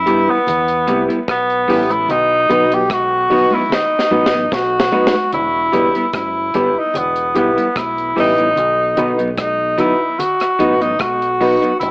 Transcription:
Already playing: tenor saxophone E4
0.06 fingered electric bass G2, clean electric guitar G3 B3 E4, upright piano E4 G4 B4, closed hi-hat
0.27 clean electric guitar G3 B3 E4, tenor saxophone B3
0.47 fingered electric bass E2, closed hi-hat, low conga
0.68 closed hi-hat
0.87 fingered electric bass C2, clean electric guitar G3 B3 E4, upright piano E4 G4 B4, closed hi-hat, high conga
1.08 clean electric guitar G3 B3 E4, closed hi-hat
1.28 fingered electric bass B1, tenor saxophone B3, kick, cross-stick, closed hi-hat
1.50 closed hi-hat
1.68 fingered electric bass A1, clean electric guitar G3 B3 E4, upright piano E4 G4 B4, open hi-hat
1.90 tenor saxophone E4, closed hi-hat, high conga
2.08 fingered electric bass B1, tenor saxophone D#4, closed hi-hat, low conga
2.49 fingered electric bass B1, clean electric guitar F#3 B3 D#4, upright piano D#4 F#4 B4, closed hi-hat, low conga
2.71 clean electric guitar F#3 B3 D#4, tenor saxophone G4, closed hi-hat
2.89 tenor saxophone F#4, kick, cross-stick, closed hi-hat, high conga
3.30 clean electric guitar F#3 B3 D#4, upright piano D#4 F#4 B4, open hi-hat, low conga
3.51 clean electric guitar F#3 B3 D#4, tenor saxophone E4, high conga
3.69 snare, low conga
3.73 tenor saxophone D#4
3.99 snare
4.11 fingered electric bass A1, clean electric guitar F#3 B3 D#4, upright piano D#4 F#4 B4, high conga
4.26 snare
4.33 clean electric guitar F#3 B3 D#4
4.52 fingered electric bass B1, tenor saxophone F#4, kick, snare
4.80 snare
4.92 clean electric guitar F#3 B3 D#4, upright piano D#4 F#4 B4, high conga
5.07 snare
5.14 high conga
5.33 fingered electric bass E1, tenor saxophone E4, closed hi-hat, low conga
5.72 fingered electric bass E1, clean electric guitar G3 B3 E4, upright piano E4 G4 B4, closed hi-hat, low conga
5.95 clean electric guitar G3 B3 E4, closed hi-hat
6.13 fingered electric bass F#1, tenor saxophone E4, kick, cross-stick, closed hi-hat, high conga
6.54 fingered electric bass G1, clean electric guitar G3 B3 E4, upright piano E4 G4 B4, closed hi-hat, low conga
6.79 tenor saxophone D#4
6.94 fingered electric bass E1, tenor saxophone B3, closed hi-hat, low conga
7.16 closed hi-hat
7.34 fingered electric bass B1, clean electric guitar G3 B3 E4, tenor saxophone B3, upright piano E4 G4 B4, closed hi-hat
7.57 clean electric guitar G3 B3 E4, closed hi-hat
7.76 fingered electric bass B1, tenor saxophone E4, kick, cross-stick, closed hi-hat, high conga
7.98 closed hi-hat
8.15 fingered electric bass A1, clean electric guitar G3 B3 E4, upright piano E4 G4 B4, open hi-hat
8.20 tenor saxophone D#4
8.38 clean electric guitar G3 B3 E4, closed hi-hat
8.56 fingered electric bass B1, closed hi-hat, low conga
8.97 fingered electric bass B1, clean electric guitar F#3 B3 D#4, upright piano D#4 F#4 B4, closed hi-hat, low conga
9.18 clean electric guitar F#3 B3 D#4, closed hi-hat
9.37 tenor saxophone D#4, kick, cross-stick, closed hi-hat, high conga
9.78 clean electric guitar F#3 B3 D#4, upright piano D#4 F#4 B4, tenor saxophone E4, closed hi-hat, low conga
10.19 tenor saxophone F#4, closed hi-hat, low conga
10.40 cross-stick, closed hi-hat
10.59 fingered electric bass A1, clean electric guitar F#3 B3 D#4, upright piano D#4 F#4 B4, closed hi-hat
10.81 clean electric guitar F#3 B3 D#4, tenor saxophone D#4, closed hi-hat
10.99 fingered electric bass B1, tenor saxophone F#4, kick, cross-stick, closed hi-hat, high conga
11.22 closed hi-hat
11.40 clean electric guitar F#3 B3 D#4, upright piano D#4 F#4 B4, open hi-hat
11.62 clean electric guitar F#3 B3 D#4, closed hi-hat
11.80 fingered electric bass E1, tenor saxophone E4, closed hi-hat, low conga

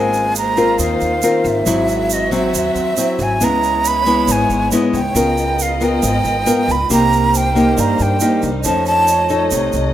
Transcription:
Already playing: upright bass G#1, nylon-string guitar G#3 C4 F4 A#4, string section A#3 F4 C5, flute G#5
0.14 shaker
0.35 flute A#5, shaker
0.57 nylon-string guitar C4 F4 A#4, shaker
0.79 upright bass D#2, nylon-string guitar D#3, flute F5, shaker
1.01 upright bass D#2, shaker
1.22 nylon-string guitar C4 F4 A#4, shaker
1.44 upright bass G#1, flute E5, shaker
1.66 upright bass G#1, nylon-string guitar G#2 F#3 C4 E4, string section C4 F#4 E5, shaker
1.88 shaker
2.10 flute D#5, shaker
2.31 nylon-string guitar F#3 C4, flute E5, shaker
2.54 upright bass D#2, shaker
2.75 upright bass D#2, shaker
2.97 nylon-string guitar F#3 C4 E4, shaker
3.19 upright bass G#1, flute G#5, shaker
3.40 upright bass C#2, nylon-string guitar C#3 G#3 B3 E4, string section B3 E4 C#5, flute A#5, shaker
3.63 shaker
3.85 flute B5, shaker
4.06 nylon-string guitar G#3 B3 E4, shaker
4.28 upright bass G#1, nylon-string guitar G#2, flute G#5, shaker
4.50 upright bass G#1, shaker
4.71 nylon-string guitar G#3 B3 E4, shaker
4.93 upright bass C#2, flute G5, shaker
5.15 upright bass C#2, nylon-string guitar C#3 B3 F4 A#4, string section B3 F4 A#4 D#5, shaker
5.38 shaker
5.59 flute F5, shaker
5.81 nylon-string guitar B3 F4 A#4, flute G5, shaker
6.02 upright bass G#1, nylon-string guitar G#2, shaker
6.24 upright bass G#1, shaker
6.46 nylon-string guitar B3 F4 A#4, shaker
6.68 upright bass C#2, flute B5, shaker
6.90 upright bass C2, nylon-string guitar C3 A#3 D#4 G4, string section A#3 D#4 C5, alto flute A#4, flute A#5, shaker
7.12 shaker
7.34 flute G5, shaker
7.55 nylon-string guitar A#3 D#4 G4, shaker
7.77 nylon-string guitar G2, upright bass G2, flute A#5, shaker
7.99 upright bass G2, flute G5, shaker
8.20 nylon-string guitar A#3 D#4 G4, shaker
8.42 upright bass C2, shaker
8.62 upright bass F2, nylon-string guitar F3 C#4 D#4 A4, string section A3 D#5, alto flute C#5, flute A5, shaker
8.86 flute A5, shaker
9.07 shaker
9.29 nylon-string guitar D#4 A4, shaker
9.51 upright bass C2, nylon-string guitar C3, shaker
9.73 upright bass C2, shaker

